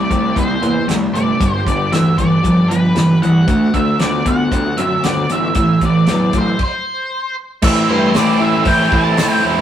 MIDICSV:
0, 0, Header, 1, 6, 480
1, 0, Start_track
1, 0, Tempo, 518583
1, 1300, Time_signature, 4, 2, 24, 8
1, 8897, End_track
2, 0, Start_track
2, 0, Title_t, "Lead electric guitar"
2, 0, Program_c, 0, 29
2, 0, Note_on_c, 0, 74, 73
2, 314, Note_off_c, 0, 74, 0
2, 358, Note_on_c, 0, 72, 61
2, 796, Note_off_c, 0, 72, 0
2, 1052, Note_on_c, 0, 74, 87
2, 1503, Note_off_c, 0, 74, 0
2, 1552, Note_on_c, 0, 74, 73
2, 1770, Note_off_c, 0, 74, 0
2, 1780, Note_on_c, 0, 76, 81
2, 2014, Note_off_c, 0, 76, 0
2, 2018, Note_on_c, 0, 74, 85
2, 2482, Note_on_c, 0, 71, 91
2, 2515, Note_off_c, 0, 74, 0
2, 2938, Note_off_c, 0, 71, 0
2, 2984, Note_on_c, 0, 78, 88
2, 3459, Note_on_c, 0, 76, 89
2, 3479, Note_off_c, 0, 78, 0
2, 3701, Note_off_c, 0, 76, 0
2, 3705, Note_on_c, 0, 74, 84
2, 3952, Note_off_c, 0, 74, 0
2, 3955, Note_on_c, 0, 78, 93
2, 4417, Note_on_c, 0, 76, 89
2, 4445, Note_off_c, 0, 78, 0
2, 4666, Note_off_c, 0, 76, 0
2, 4669, Note_on_c, 0, 74, 93
2, 4915, Note_off_c, 0, 74, 0
2, 4924, Note_on_c, 0, 76, 83
2, 5362, Note_off_c, 0, 76, 0
2, 5417, Note_on_c, 0, 74, 74
2, 5896, Note_off_c, 0, 74, 0
2, 5901, Note_on_c, 0, 72, 72
2, 6129, Note_off_c, 0, 72, 0
2, 6140, Note_on_c, 0, 72, 73
2, 6806, Note_off_c, 0, 72, 0
2, 7074, Note_on_c, 0, 76, 94
2, 7304, Note_on_c, 0, 72, 83
2, 7316, Note_off_c, 0, 76, 0
2, 7551, Note_off_c, 0, 72, 0
2, 7560, Note_on_c, 0, 74, 95
2, 7776, Note_off_c, 0, 74, 0
2, 7786, Note_on_c, 0, 76, 98
2, 8027, Note_on_c, 0, 79, 107
2, 8031, Note_off_c, 0, 76, 0
2, 8248, Note_off_c, 0, 79, 0
2, 8285, Note_on_c, 0, 81, 106
2, 8719, Note_off_c, 0, 81, 0
2, 8897, End_track
3, 0, Start_track
3, 0, Title_t, "Tonewheel organ"
3, 0, Program_c, 1, 16
3, 0, Note_on_c, 1, 60, 64
3, 0, Note_on_c, 1, 67, 63
3, 0, Note_on_c, 1, 76, 58
3, 1285, Note_off_c, 1, 60, 0
3, 1285, Note_off_c, 1, 67, 0
3, 1285, Note_off_c, 1, 76, 0
3, 1298, Note_on_c, 1, 59, 67
3, 1309, Note_on_c, 1, 67, 62
3, 1311, Note_on_c, 1, 74, 57
3, 3203, Note_off_c, 1, 59, 0
3, 3208, Note_off_c, 1, 74, 0
3, 3209, Note_off_c, 1, 67, 0
3, 3209, Note_on_c, 1, 57, 67
3, 3214, Note_on_c, 1, 66, 64
3, 3219, Note_on_c, 1, 74, 64
3, 5120, Note_off_c, 1, 57, 0
3, 5123, Note_off_c, 1, 66, 0
3, 5125, Note_off_c, 1, 74, 0
3, 5140, Note_on_c, 1, 72, 68
3, 5141, Note_on_c, 1, 64, 71
3, 5144, Note_on_c, 1, 57, 66
3, 6094, Note_off_c, 1, 72, 0
3, 6095, Note_off_c, 1, 64, 0
3, 6096, Note_off_c, 1, 57, 0
3, 7075, Note_on_c, 1, 72, 70
3, 7076, Note_on_c, 1, 64, 67
3, 7078, Note_on_c, 1, 57, 77
3, 8897, Note_off_c, 1, 57, 0
3, 8897, Note_off_c, 1, 64, 0
3, 8897, Note_off_c, 1, 72, 0
3, 8897, End_track
4, 0, Start_track
4, 0, Title_t, "Overdriven electric guitar"
4, 0, Program_c, 2, 29
4, 90, Note_on_c, 2, 48, 58
4, 92, Note_on_c, 2, 57, 63
4, 310, Note_off_c, 2, 48, 0
4, 311, Note_off_c, 2, 57, 0
4, 327, Note_on_c, 2, 48, 62
4, 331, Note_on_c, 2, 58, 75
4, 549, Note_off_c, 2, 48, 0
4, 551, Note_off_c, 2, 58, 0
4, 577, Note_on_c, 2, 48, 67
4, 585, Note_on_c, 2, 58, 65
4, 794, Note_off_c, 2, 48, 0
4, 798, Note_off_c, 2, 58, 0
4, 817, Note_on_c, 2, 48, 66
4, 824, Note_on_c, 2, 57, 78
4, 1034, Note_off_c, 2, 48, 0
4, 1037, Note_off_c, 2, 57, 0
4, 1060, Note_on_c, 2, 48, 61
4, 1067, Note_on_c, 2, 57, 67
4, 1276, Note_off_c, 2, 48, 0
4, 1280, Note_off_c, 2, 57, 0
4, 1294, Note_on_c, 2, 43, 73
4, 1296, Note_on_c, 2, 50, 78
4, 1513, Note_off_c, 2, 43, 0
4, 1514, Note_off_c, 2, 50, 0
4, 1545, Note_on_c, 2, 43, 69
4, 1549, Note_on_c, 2, 50, 69
4, 1759, Note_off_c, 2, 43, 0
4, 1761, Note_off_c, 2, 50, 0
4, 1779, Note_on_c, 2, 52, 76
4, 1780, Note_on_c, 2, 43, 67
4, 1996, Note_off_c, 2, 52, 0
4, 1997, Note_off_c, 2, 43, 0
4, 2022, Note_on_c, 2, 43, 57
4, 2024, Note_on_c, 2, 52, 74
4, 2238, Note_off_c, 2, 43, 0
4, 2239, Note_off_c, 2, 52, 0
4, 2250, Note_on_c, 2, 43, 70
4, 2253, Note_on_c, 2, 53, 75
4, 2472, Note_off_c, 2, 43, 0
4, 2473, Note_off_c, 2, 53, 0
4, 2495, Note_on_c, 2, 43, 68
4, 2500, Note_on_c, 2, 53, 77
4, 2715, Note_off_c, 2, 43, 0
4, 2717, Note_off_c, 2, 53, 0
4, 2732, Note_on_c, 2, 43, 77
4, 2740, Note_on_c, 2, 52, 77
4, 2953, Note_off_c, 2, 43, 0
4, 2957, Note_off_c, 2, 52, 0
4, 2983, Note_on_c, 2, 43, 60
4, 2984, Note_on_c, 2, 52, 75
4, 3199, Note_off_c, 2, 43, 0
4, 3200, Note_off_c, 2, 52, 0
4, 3219, Note_on_c, 2, 50, 70
4, 3227, Note_on_c, 2, 57, 93
4, 3437, Note_off_c, 2, 50, 0
4, 3441, Note_off_c, 2, 57, 0
4, 3464, Note_on_c, 2, 50, 60
4, 3465, Note_on_c, 2, 57, 65
4, 3680, Note_off_c, 2, 50, 0
4, 3681, Note_off_c, 2, 57, 0
4, 3698, Note_on_c, 2, 50, 78
4, 3705, Note_on_c, 2, 59, 75
4, 3917, Note_off_c, 2, 50, 0
4, 3921, Note_off_c, 2, 59, 0
4, 3931, Note_on_c, 2, 50, 65
4, 3937, Note_on_c, 2, 59, 69
4, 4154, Note_off_c, 2, 50, 0
4, 4157, Note_off_c, 2, 59, 0
4, 4176, Note_on_c, 2, 50, 68
4, 4182, Note_on_c, 2, 60, 74
4, 4397, Note_off_c, 2, 50, 0
4, 4400, Note_off_c, 2, 60, 0
4, 4416, Note_on_c, 2, 50, 78
4, 4424, Note_on_c, 2, 60, 77
4, 4637, Note_off_c, 2, 50, 0
4, 4641, Note_off_c, 2, 60, 0
4, 4669, Note_on_c, 2, 50, 67
4, 4671, Note_on_c, 2, 59, 70
4, 4884, Note_off_c, 2, 50, 0
4, 4884, Note_off_c, 2, 59, 0
4, 4915, Note_on_c, 2, 50, 60
4, 4920, Note_on_c, 2, 59, 76
4, 5127, Note_off_c, 2, 50, 0
4, 5129, Note_off_c, 2, 59, 0
4, 5158, Note_on_c, 2, 45, 81
4, 5163, Note_on_c, 2, 52, 88
4, 5368, Note_off_c, 2, 45, 0
4, 5371, Note_off_c, 2, 52, 0
4, 5394, Note_on_c, 2, 45, 66
4, 5398, Note_on_c, 2, 52, 72
4, 5606, Note_off_c, 2, 45, 0
4, 5609, Note_off_c, 2, 52, 0
4, 5627, Note_on_c, 2, 45, 75
4, 5632, Note_on_c, 2, 54, 81
4, 5843, Note_off_c, 2, 45, 0
4, 5846, Note_off_c, 2, 54, 0
4, 5865, Note_on_c, 2, 45, 65
4, 5867, Note_on_c, 2, 54, 67
4, 6082, Note_off_c, 2, 45, 0
4, 6083, Note_off_c, 2, 54, 0
4, 7055, Note_on_c, 2, 45, 89
4, 7063, Note_on_c, 2, 52, 103
4, 7072, Note_on_c, 2, 57, 95
4, 7075, Note_on_c, 2, 60, 110
4, 7084, Note_on_c, 2, 64, 101
4, 7289, Note_off_c, 2, 64, 0
4, 7300, Note_on_c, 2, 64, 68
4, 7302, Note_off_c, 2, 60, 0
4, 7313, Note_on_c, 2, 60, 69
4, 7315, Note_off_c, 2, 57, 0
4, 7326, Note_on_c, 2, 57, 58
4, 7517, Note_off_c, 2, 52, 0
4, 7528, Note_on_c, 2, 52, 70
4, 7531, Note_off_c, 2, 57, 0
4, 7539, Note_off_c, 2, 45, 0
4, 7541, Note_off_c, 2, 60, 0
4, 7542, Note_on_c, 2, 57, 73
4, 7550, Note_off_c, 2, 64, 0
4, 7552, Note_on_c, 2, 60, 73
4, 7561, Note_on_c, 2, 64, 80
4, 8004, Note_off_c, 2, 52, 0
4, 8004, Note_on_c, 2, 45, 90
4, 8006, Note_off_c, 2, 57, 0
4, 8013, Note_off_c, 2, 60, 0
4, 8015, Note_on_c, 2, 52, 90
4, 8017, Note_on_c, 2, 57, 99
4, 8020, Note_off_c, 2, 64, 0
4, 8024, Note_on_c, 2, 60, 84
4, 8031, Note_on_c, 2, 64, 91
4, 8236, Note_off_c, 2, 64, 0
4, 8247, Note_on_c, 2, 64, 77
4, 8250, Note_off_c, 2, 60, 0
4, 8261, Note_on_c, 2, 60, 68
4, 8262, Note_off_c, 2, 57, 0
4, 8273, Note_on_c, 2, 57, 60
4, 8478, Note_off_c, 2, 52, 0
4, 8486, Note_off_c, 2, 57, 0
4, 8489, Note_on_c, 2, 52, 79
4, 8492, Note_off_c, 2, 45, 0
4, 8497, Note_off_c, 2, 60, 0
4, 8497, Note_on_c, 2, 57, 73
4, 8501, Note_off_c, 2, 64, 0
4, 8508, Note_on_c, 2, 60, 83
4, 8512, Note_on_c, 2, 64, 75
4, 8711, Note_off_c, 2, 64, 0
4, 8722, Note_on_c, 2, 64, 62
4, 8725, Note_off_c, 2, 60, 0
4, 8736, Note_on_c, 2, 60, 63
4, 8739, Note_off_c, 2, 57, 0
4, 8750, Note_on_c, 2, 57, 54
4, 8897, Note_off_c, 2, 52, 0
4, 8897, Note_off_c, 2, 57, 0
4, 8897, Note_off_c, 2, 60, 0
4, 8897, Note_off_c, 2, 64, 0
4, 8897, End_track
5, 0, Start_track
5, 0, Title_t, "Picked electric bass"
5, 0, Program_c, 3, 34
5, 97, Note_on_c, 3, 36, 74
5, 271, Note_off_c, 3, 36, 0
5, 338, Note_on_c, 3, 36, 81
5, 512, Note_off_c, 3, 36, 0
5, 567, Note_on_c, 3, 40, 70
5, 745, Note_off_c, 3, 40, 0
5, 809, Note_on_c, 3, 36, 88
5, 987, Note_off_c, 3, 36, 0
5, 1046, Note_on_c, 3, 31, 79
5, 1225, Note_off_c, 3, 31, 0
5, 1300, Note_on_c, 3, 31, 82
5, 1474, Note_off_c, 3, 31, 0
5, 1540, Note_on_c, 3, 31, 69
5, 1714, Note_off_c, 3, 31, 0
5, 1780, Note_on_c, 3, 38, 90
5, 1954, Note_off_c, 3, 38, 0
5, 2023, Note_on_c, 3, 31, 73
5, 2196, Note_off_c, 3, 31, 0
5, 2265, Note_on_c, 3, 31, 89
5, 2438, Note_off_c, 3, 31, 0
5, 2504, Note_on_c, 3, 31, 80
5, 2678, Note_off_c, 3, 31, 0
5, 2744, Note_on_c, 3, 31, 92
5, 2917, Note_off_c, 3, 31, 0
5, 2991, Note_on_c, 3, 36, 73
5, 3162, Note_off_c, 3, 36, 0
5, 3218, Note_on_c, 3, 38, 95
5, 3394, Note_off_c, 3, 38, 0
5, 3465, Note_on_c, 3, 38, 76
5, 3638, Note_off_c, 3, 38, 0
5, 3718, Note_on_c, 3, 38, 78
5, 3887, Note_off_c, 3, 38, 0
5, 3939, Note_on_c, 3, 38, 78
5, 4115, Note_off_c, 3, 38, 0
5, 4181, Note_on_c, 3, 38, 83
5, 4357, Note_off_c, 3, 38, 0
5, 4423, Note_on_c, 3, 42, 77
5, 4598, Note_off_c, 3, 42, 0
5, 4677, Note_on_c, 3, 38, 96
5, 4847, Note_off_c, 3, 38, 0
5, 4913, Note_on_c, 3, 33, 77
5, 5137, Note_off_c, 3, 33, 0
5, 5141, Note_on_c, 3, 33, 92
5, 5317, Note_off_c, 3, 33, 0
5, 5383, Note_on_c, 3, 33, 70
5, 5558, Note_off_c, 3, 33, 0
5, 5651, Note_on_c, 3, 40, 85
5, 5816, Note_off_c, 3, 40, 0
5, 5868, Note_on_c, 3, 33, 74
5, 6041, Note_off_c, 3, 33, 0
5, 7064, Note_on_c, 3, 33, 101
5, 7271, Note_off_c, 3, 33, 0
5, 7311, Note_on_c, 3, 43, 80
5, 7515, Note_off_c, 3, 43, 0
5, 7552, Note_on_c, 3, 33, 91
5, 7755, Note_off_c, 3, 33, 0
5, 7781, Note_on_c, 3, 33, 79
5, 7989, Note_off_c, 3, 33, 0
5, 8016, Note_on_c, 3, 33, 92
5, 8226, Note_off_c, 3, 33, 0
5, 8257, Note_on_c, 3, 33, 89
5, 8466, Note_off_c, 3, 33, 0
5, 8494, Note_on_c, 3, 45, 108
5, 8704, Note_off_c, 3, 45, 0
5, 8747, Note_on_c, 3, 28, 93
5, 8897, Note_off_c, 3, 28, 0
5, 8897, End_track
6, 0, Start_track
6, 0, Title_t, "Drums"
6, 99, Note_on_c, 9, 36, 76
6, 102, Note_on_c, 9, 42, 53
6, 191, Note_off_c, 9, 36, 0
6, 195, Note_off_c, 9, 42, 0
6, 337, Note_on_c, 9, 36, 77
6, 342, Note_on_c, 9, 42, 66
6, 429, Note_off_c, 9, 36, 0
6, 435, Note_off_c, 9, 42, 0
6, 581, Note_on_c, 9, 42, 55
6, 673, Note_off_c, 9, 42, 0
6, 822, Note_on_c, 9, 42, 72
6, 831, Note_on_c, 9, 38, 98
6, 915, Note_off_c, 9, 42, 0
6, 923, Note_off_c, 9, 38, 0
6, 1069, Note_on_c, 9, 42, 60
6, 1161, Note_off_c, 9, 42, 0
6, 1302, Note_on_c, 9, 36, 103
6, 1305, Note_on_c, 9, 42, 74
6, 1394, Note_off_c, 9, 36, 0
6, 1398, Note_off_c, 9, 42, 0
6, 1542, Note_on_c, 9, 36, 72
6, 1551, Note_on_c, 9, 42, 54
6, 1634, Note_off_c, 9, 36, 0
6, 1643, Note_off_c, 9, 42, 0
6, 1783, Note_on_c, 9, 42, 73
6, 1791, Note_on_c, 9, 38, 91
6, 1875, Note_off_c, 9, 42, 0
6, 1884, Note_off_c, 9, 38, 0
6, 2019, Note_on_c, 9, 36, 69
6, 2023, Note_on_c, 9, 42, 59
6, 2112, Note_off_c, 9, 36, 0
6, 2115, Note_off_c, 9, 42, 0
6, 2261, Note_on_c, 9, 36, 68
6, 2266, Note_on_c, 9, 42, 73
6, 2353, Note_off_c, 9, 36, 0
6, 2359, Note_off_c, 9, 42, 0
6, 2511, Note_on_c, 9, 42, 59
6, 2604, Note_off_c, 9, 42, 0
6, 2738, Note_on_c, 9, 42, 67
6, 2746, Note_on_c, 9, 38, 98
6, 2830, Note_off_c, 9, 42, 0
6, 2839, Note_off_c, 9, 38, 0
6, 2991, Note_on_c, 9, 42, 49
6, 3084, Note_off_c, 9, 42, 0
6, 3220, Note_on_c, 9, 36, 102
6, 3220, Note_on_c, 9, 42, 71
6, 3312, Note_off_c, 9, 36, 0
6, 3313, Note_off_c, 9, 42, 0
6, 3461, Note_on_c, 9, 36, 73
6, 3464, Note_on_c, 9, 42, 51
6, 3554, Note_off_c, 9, 36, 0
6, 3557, Note_off_c, 9, 42, 0
6, 3698, Note_on_c, 9, 42, 64
6, 3707, Note_on_c, 9, 38, 106
6, 3791, Note_off_c, 9, 42, 0
6, 3799, Note_off_c, 9, 38, 0
6, 3941, Note_on_c, 9, 36, 74
6, 3942, Note_on_c, 9, 42, 55
6, 4033, Note_off_c, 9, 36, 0
6, 4034, Note_off_c, 9, 42, 0
6, 4181, Note_on_c, 9, 36, 78
6, 4185, Note_on_c, 9, 42, 72
6, 4273, Note_off_c, 9, 36, 0
6, 4278, Note_off_c, 9, 42, 0
6, 4422, Note_on_c, 9, 42, 60
6, 4514, Note_off_c, 9, 42, 0
6, 4662, Note_on_c, 9, 42, 86
6, 4670, Note_on_c, 9, 38, 98
6, 4755, Note_off_c, 9, 42, 0
6, 4763, Note_off_c, 9, 38, 0
6, 4902, Note_on_c, 9, 42, 67
6, 4994, Note_off_c, 9, 42, 0
6, 5134, Note_on_c, 9, 42, 88
6, 5141, Note_on_c, 9, 36, 101
6, 5227, Note_off_c, 9, 42, 0
6, 5233, Note_off_c, 9, 36, 0
6, 5380, Note_on_c, 9, 42, 50
6, 5382, Note_on_c, 9, 36, 73
6, 5473, Note_off_c, 9, 42, 0
6, 5475, Note_off_c, 9, 36, 0
6, 5615, Note_on_c, 9, 42, 76
6, 5623, Note_on_c, 9, 38, 104
6, 5708, Note_off_c, 9, 42, 0
6, 5716, Note_off_c, 9, 38, 0
6, 5859, Note_on_c, 9, 42, 56
6, 5863, Note_on_c, 9, 36, 78
6, 5952, Note_off_c, 9, 42, 0
6, 5955, Note_off_c, 9, 36, 0
6, 6099, Note_on_c, 9, 49, 69
6, 6103, Note_on_c, 9, 36, 85
6, 6192, Note_off_c, 9, 49, 0
6, 6195, Note_off_c, 9, 36, 0
6, 7056, Note_on_c, 9, 49, 127
6, 7061, Note_on_c, 9, 36, 117
6, 7148, Note_off_c, 9, 49, 0
6, 7153, Note_off_c, 9, 36, 0
6, 7536, Note_on_c, 9, 46, 60
6, 7545, Note_on_c, 9, 38, 118
6, 7553, Note_on_c, 9, 54, 90
6, 7629, Note_off_c, 9, 46, 0
6, 7637, Note_off_c, 9, 38, 0
6, 7645, Note_off_c, 9, 54, 0
6, 8008, Note_on_c, 9, 46, 66
6, 8015, Note_on_c, 9, 36, 92
6, 8101, Note_off_c, 9, 46, 0
6, 8107, Note_off_c, 9, 36, 0
6, 8256, Note_on_c, 9, 36, 92
6, 8348, Note_off_c, 9, 36, 0
6, 8492, Note_on_c, 9, 46, 70
6, 8500, Note_on_c, 9, 38, 117
6, 8505, Note_on_c, 9, 54, 105
6, 8584, Note_off_c, 9, 46, 0
6, 8592, Note_off_c, 9, 38, 0
6, 8598, Note_off_c, 9, 54, 0
6, 8897, End_track
0, 0, End_of_file